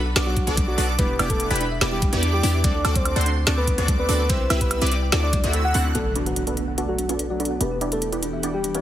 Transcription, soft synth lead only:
0.26 0.49 F#4 loud
0.68 0.85 F#4 loud
0.98 1.16 B4 loud
1.30 1.47 A4 loud
1.92 2.15 G4 loud
2.33 2.51 G4 loud
2.64 2.97 D5 loud
2.96 3.13 C5 loud
3.58 3.81 B4 loud
3.99 4.31 B4 loud
4.30 4.47 C5 loud
4.61 4.78 B4 loud
5.23 5.46 D5 loud
5.64 5.82 F#5 loud
5.95 6.13 A4 medium
6.26 6.44 F#4 medium
6.88 7.12 F#4 loud
7.30 7.62 F#4 medium
7.61 7.78 B4 medium
7.92 8.09 A4 medium
8.54 8.77 G4 medium

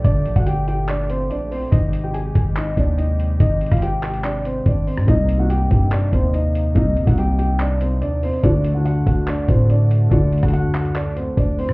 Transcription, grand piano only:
0.04 0.34 D4 medium
0.04 0.34 D5 loud
0.36 0.46 F#4 medium
0.36 0.46 F#5 medium
0.46 0.66 G4 medium
0.46 0.66 G5 medium
0.68 0.87 G4 medium
0.68 0.87 G5 medium
0.88 1.08 D4 medium
0.88 1.08 D5 loud
1.10 1.29 C4 medium
1.10 1.29 C5 medium
1.30 1.50 D4 medium
1.30 1.50 D5 medium
1.51 1.71 C4 medium
1.51 1.71 C5 medium
1.72 2.02 D#4 medium
1.72 2.02 D#5 loud
2.04 2.14 G4 medium
2.04 2.13 G5 medium
2.14 2.34 G#4 medium
2.14 2.33 G#5 medium
2.35 2.55 G#4 medium
2.35 2.55 G#5 medium
2.56 2.76 D#4 medium
2.56 2.76 D#5 medium
2.77 2.97 D4 medium
2.77 2.97 D5 medium
2.98 3.38 D#4 medium
2.98 3.37 D#5 medium
3.40 3.70 D#4 medium
3.40 3.70 D#5 loud
3.72 3.82 F4 medium
3.72 3.81 F5 medium
3.82 4.02 G4 medium
3.82 4.01 G5 loud
4.03 4.23 G4 medium
4.03 4.22 G5 medium
4.23 4.44 D4 medium
4.23 4.43 D5 medium
4.45 4.65 C4 medium
4.45 4.65 C5 medium
4.67 4.86 D4 medium
4.67 4.86 D5 medium
4.87 5.07 C4 medium
4.87 5.06 C5 medium
5.08 5.38 D#4 medium
5.08 5.38 D#5 loud
5.39 5.50 F#4 medium
5.39 5.49 F#5 medium
5.49 5.70 G4 medium
5.49 5.69 G5 medium
5.71 5.91 G4 medium
5.71 5.90 G5 medium
5.91 6.11 D4 medium
5.91 6.11 D5 medium
6.13 6.33 C4 medium
6.13 6.33 C5 medium
6.33 6.73 D#4 medium
6.33 6.73 D#5 medium
6.76 7.06 D#4 medium
6.76 7.05 D#5 medium
7.07 7.17 F#4 medium
7.07 7.17 F#5 medium
7.18 7.38 G4 medium
7.18 7.37 G5 medium
7.38 7.59 G4 medium
7.38 7.58 G5 medium
7.60 7.80 D4 medium
7.60 7.79 D5 medium
7.81 8.01 C4 medium
7.81 8.00 C5 medium
8.02 8.22 D4 medium
8.02 8.21 D5 medium
8.23 8.43 C4 medium
8.23 8.42 C5 medium
8.44 8.74 D4 medium
8.44 8.73 D5 loud
8.75 8.85 F#4 medium
8.75 8.84 F#5 medium
8.85 9.05 F#4 medium
8.85 9.05 F#5 medium
9.07 9.27 F#4 medium
9.07 9.26 F#5 medium
9.28 9.48 D4 medium
9.28 9.47 D5 medium
9.49 9.69 C4 medium
9.49 9.68 C5 medium
9.70 10.10 D4 medium
9.70 10.09 D5 medium
10.11 10.41 D4 medium
10.11 10.41 D5 medium
10.43 10.53 F#4 medium
10.43 10.52 F#5 medium
10.53 10.73 F#4 medium
10.53 10.73 F#5 loud
10.74 10.94 F#4 medium
10.74 10.94 F#5 medium
10.95 11.15 D4 medium
10.95 11.15 D5 medium
11.16 11.36 C4 medium
11.16 11.36 C5 medium
11.38 11.57 D4 medium
11.38 11.57 D5 medium
11.58 11.73 C4 medium
11.58 11.73 C5 medium

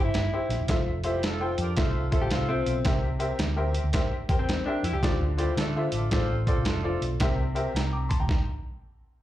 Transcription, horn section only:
1.05 1.20 G3 medium
1.05 1.20 C4 medium
1.05 1.20 E4 medium
1.05 1.20 G4 medium
1.23 1.52 A3 medium
1.23 1.52 F4 medium
1.23 1.52 A4 medium
1.59 1.74 D4 medium
1.59 1.74 G4 medium
1.59 1.75 A#4 medium
1.59 1.74 D5 medium
1.78 2.06 C4 medium
1.78 2.06 F4 medium
1.78 2.07 A4 medium
1.78 2.06 C5 medium
2.12 2.28 A3 medium
2.12 2.28 F4 medium
2.12 2.28 A4 medium
2.31 2.74 C4 medium
2.31 2.74 F4 medium
2.31 2.73 A4 medium
2.31 2.74 C5 medium
5.38 5.54 G3 medium
5.38 5.54 C4 medium
5.38 5.53 E4 medium
5.38 5.54 G4 medium
5.57 5.86 A3 medium
5.57 5.86 D4 medium
5.57 5.86 F4 medium
5.57 5.86 A4 loud
5.93 6.08 D4 medium
5.93 6.08 F4 medium
5.93 6.08 A4 medium
5.93 6.08 D5 medium
6.11 6.39 C4 medium
6.11 6.40 F4 medium
6.11 6.40 A4 medium
6.11 6.39 C5 medium
6.46 6.61 C4 medium
6.46 6.62 F4 medium
6.46 6.62 A4 medium
6.46 6.61 C5 medium
6.67 7.08 A3 medium
6.67 7.08 D4 medium
6.67 7.08 F4 medium
6.67 7.08 A4 medium

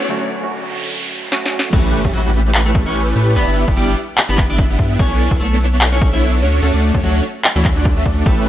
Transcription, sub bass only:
1.73 2.02 A1 loud
2.05 2.12 A1 loud
2.14 2.84 A1 loud
2.86 3.14 A1 loud
3.16 3.38 A2 loud
3.36 3.45 G1 loud
3.47 3.66 G1 medium
3.68 3.75 G1 medium
3.77 3.95 G1 loud
4.29 4.47 G1 loud
4.49 4.68 G1 loud
4.70 4.77 G1 loud
4.79 4.98 G2 loud
4.99 5.29 B1 loud
5.31 5.38 B1 loud
5.40 6.10 B1 loud
6.13 6.44 B1 loud
6.42 6.61 D2 loud
6.63 6.72 D2 loud
6.74 6.92 D2 medium
6.94 7.02 D2 medium
7.03 7.22 D2 loud
7.56 7.74 D2 loud
7.76 7.94 D2 loud
7.96 8.04 D2 loud
8.06 8.24 D2 medium
8.26 8.49 A1 loud

